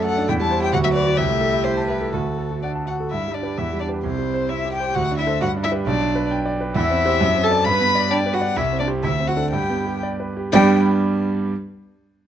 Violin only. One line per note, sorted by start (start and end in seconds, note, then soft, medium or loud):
0.05 0.28 F#5 medium
0.28 0.33 G5 loud
0.42 0.62 A5 medium
0.62 0.72 G5 medium
0.73 0.77 F#5 loud
0.84 0.89 E5 medium
0.94 1.19 D5 loud
1.17 1.65 E5 loud
1.64 1.87 C5 medium
1.88 2.14 B4 medium
2.13 2.62 A4 medium
2.63 2.71 D5 soft
2.87 2.95 F#5 soft
3.11 3.36 E5 medium
3.34 3.59 D5 medium
3.58 3.80 E5 medium
3.80 3.88 D5 medium
4.04 4.51 C5 medium
4.49 4.73 E5 medium
4.73 4.96 G5 medium
4.95 5.18 F#5 loud
5.18 5.41 E5 medium
5.42 5.50 F#5 loud
5.64 5.72 E5 medium
5.86 6.30 D5 medium
6.76 7.45 E5 loud
7.43 7.66 A5 loud
7.65 8.12 B5 loud
8.11 8.36 D5 loud
8.34 8.58 F#5 loud
8.56 8.79 E5 medium
8.80 8.88 D5 medium
9.04 9.29 E5 medium
9.27 9.51 F#5 medium
9.51 10.01 G5 medium
10.52 10.79 G5 loud